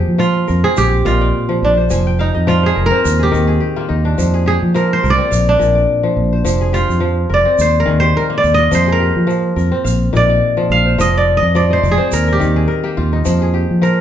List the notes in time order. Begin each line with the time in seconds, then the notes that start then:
Already playing: F3 A#3 C4 F4 G4 G#4
0.08 F3
0.18 F3 F4, shaker
0.48 F2 A#4, shaker
0.64 C4 G#4
0.76 A#1 G4 F5, shaker
1.05 A#1 A#2 F4 D#5, shaker
1.21 D5
1.49 F3
1.63 A#1 D4
1.77 C5
1.90 F1 F3 G#5, shaker
2.07 G5
2.19 D#4 F5
2.34 F2 D#5
2.47 F3 F4 D5, shaker
2.63 G#4 C5
2.76 F1 A#4
2.86 A#4
2.91 C4 C5
3.04 D#2 A#4, shaker
3.19 G4 G#4
3.32 D#2 D#3 A#4, shaker
3.47 G#4
3.60 G4
3.76 A#3 F4
3.89 D#2 D#4
4.05 D4
4.18 F2 F3, shaker
4.34 G#4
4.46 G4 G#4
4.63 F3
4.74 F3 A#4, shaker
4.93 C5
5.03 C2 A#4, shaker
5.10 D5
5.18 C4
5.31 A#1 F5, shaker
5.49 D4
5.59 A#1 A#2 D5, shaker
5.75 D5
6.03 F3
6.17 A#1
6.32 C5
6.45 F1 F3, shaker
6.61 G#4
6.73 F4 G4, shaker
6.89 F2, shaker
7.00 F3
7.29 F1 A#4
7.34 D5
7.45 C4
7.59 D#2 C5, shaker
7.80 A#4
7.85 D#2 D#3 G#4
8.00 G4 C5
8.17 A#4
8.30 A#3
8.38 D5
8.44 D#2, shaker
8.54 F4 D#5
8.71 F2 F3 C5, shaker
8.87 G#4
8.92 A#4
9.00 G4
9.16 F3
9.27 F3, shaker
9.56 F2 A#4, shaker
9.72 C4
9.84 A#1 F5, shaker
10.13 A#1 A#2 D#4 D5, shaker
10.30 D5
10.57 F3
10.70 A#1 F5
10.85 C5
10.98 F1 F3 D#5, shaker
11.17 D5
11.37 D#5
11.42 F2 D#5
11.55 F3 D5, shaker
11.70 C5 D#5
11.83 F1 D5, shaker
11.91 G#4
11.98 C4 C5
12.11 D#2 A#4 D5, shaker
12.28 A#4
12.33 G4
12.40 D#2 D#3 G4, shaker
12.56 G#4
12.68 A#4
12.84 A#3 G4
12.97 D#2 F4
13.13 D#4
13.25 F2 F3, shaker
13.42 G#4
13.54 G4
13.71 F3
13.82 F3 A#4, shaker